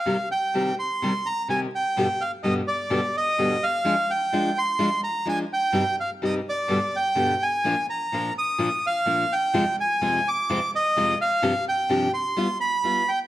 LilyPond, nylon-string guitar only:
\new Staff \with { instrumentName = "Nylon-string guitar" } { \clef bass \time 4/4 \key c \minor \tempo 4 = 127 <c ees g c' g'>8 r8 <c ees g c' g'>8 r8 <c ees g c' g'>8 r8 <c ees g c' g'>8 r8 | <g, b, d g b g'>8 r8 <g, b, d g b g'>8 r8 <g, b, d g b g'>8 r8 <g, b, d g b g'>8 r8 | <f aes d' f'>8 r8 <f aes d' f'>8 r8 <f aes d' f'>8 r8 <f aes d' f'>8 r8 | <g, c g c' ees' g'>8 r8 <g, c g c' ees' g'>8 r8 <g, b, d g b g'>8 r8 <g, b, d g b g'>8 r8 |
<bes, f bes d' f'>8 r8 <bes, f bes d' f'>8 r8 <bes, f bes d' f'>8 r8 <bes, f bes d' f'>8 r8 | <f, c f aes c' f'>8 r8 <f, c f aes c' f'>8 r8 <f, c f aes c' f'>8 r8 <f, c f aes c' f'>8 r8 | <g, c f c' d' g'>8 r8 <g, c f c' d' g'>8 r8 <g b f'>8 r8 <g b f'>8 r8 | }